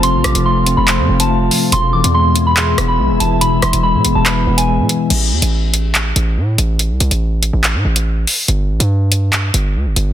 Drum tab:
CC |----------------|----------------|----------------|x---------------|
HH |x-xx--x-x--x--o-|x--x--x-x-x---x-|x-xx--x-x--x--x-|x--x--x-x-x---x-|
CP |--------x-------|--------x-------|--------x-------|--------x-------|
SD |--r-------------|----------r-----|--r-------------|----------------|

CC |----------------|----------------|
HH |x-xx--x-x--x--o-|x--x--x-x-x---x-|
CP |--------x-------|--------x-------|
SD |----------------|----------------|